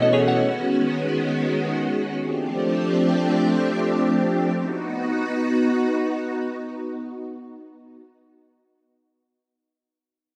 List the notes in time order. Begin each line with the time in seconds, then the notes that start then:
Already playing: B2 E3 A3 B3 C#4 E4 F#4 A4 C#5 D#5
0.02 A4 D#5
0.13 G#4 C#5
0.28 C#5 F#5
0.39 D#3 G#3 B3
2.20 F3 A3 C4 D4 G4
4.52 B3 D#4 F#4